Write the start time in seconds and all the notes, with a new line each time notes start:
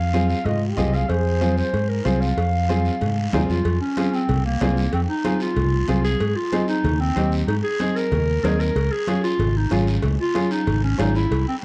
Already playing: F2 F5
0.13 C4 F4 G#4, high conga, short guiro
0.29 F5, short guiro
0.45 G#2 F4 D#5, cowbell, low conga, long guiro
0.70 G4
0.77 C2 C4 F4 G#4 D#5, high conga, low conga, short guiro
0.94 G#4 F5, short guiro
1.09 F2 G#4 C5, cowbell, long guiro
1.41 C4 F4 G#4, high conga, short guiro
1.57 C5, short guiro
1.73 G#2, cowbell, long guiro
1.89 A#4
2.05 C2 C4 F4 G#4 C5, high conga, short guiro
2.20 F5, short guiro
2.37 F2, cowbell, long guiro
2.69 C4 F4 G#4, high conga, short guiro
2.85 short guiro
3.01 G#2, cowbell, low conga, long guiro
3.33 D#2 C4 D#4 F4 G#4, high conga, low conga, low timbale, short guiro
3.48 F2 F4, short guiro
3.65 F2, cowbell, long guiro
3.81 C#4
3.97 C4 F4 G#4, cowbell, high conga, short guiro
4.14 C4, short guiro
4.29 C2, cowbell, high conga, low conga, long guiro
4.45 A#3
4.61 C2 C4 F4 G#4, cowbell, high conga, low timbale, short guiro
4.77 short guiro
4.93 F2 C4, cowbell, high conga, long guiro
5.09 D#4
5.24 C4 F4 G#4, cowbell, high conga, short guiro
5.40 F4, short guiro
5.56 C2, cowbell, high conga, low conga, long guiro
5.88 C2 C4 F4 G#4, cowbell, high conga, short guiro
6.04 G#4, short guiro
6.20 G#2, cowbell, long guiro
6.36 F4
6.52 C4 D#4 G#4, cowbell, high conga, short guiro
6.68 D#4, short guiro
6.84 D#2, cowbell, high conga, low conga, long guiro
7.00 C4
7.16 D#2 C4 D#4 G4, cowbell, high conga, short guiro
7.32 short guiro
7.47 G#2 D#4, cowbell, high conga, long guiro
7.64 G#4
7.79 C4 D#4 G#4, cowbell, high conga, short guiro
7.96 A#4, short guiro
8.12 D#2, cowbell, high conga, low conga, long guiro
8.43 D#2 C4 D#4 G#4 A#4, cowbell, high conga, low timbale, short guiro
8.60 A#4, short guiro
8.75 C#2, cowbell, high conga, long guiro
8.92 G#4
9.07 C#4 F4 G#4, cowbell, high conga, short guiro
9.24 F4, short guiro
9.39 G#1, cowbell, high conga, low conga, long guiro
9.57 D#4
9.71 G#1 C#4 F4 G#4, cowbell, high conga, short guiro
9.87 short guiro
10.02 C#2, cowbell, high conga, low conga, long guiro
10.20 F4
10.34 C#4 F4 G#4, cowbell, high conga, short guiro
10.51 D#4, short guiro
10.67 G#1, cowbell, high conga, low conga, long guiro
10.84 C#4
10.98 G#1 C#4 D#4 F4 G#4, cowbell, high conga, low timbale, short guiro
11.15 E4, short guiro
11.31 C2, cowbell, high conga, long guiro
11.48 C4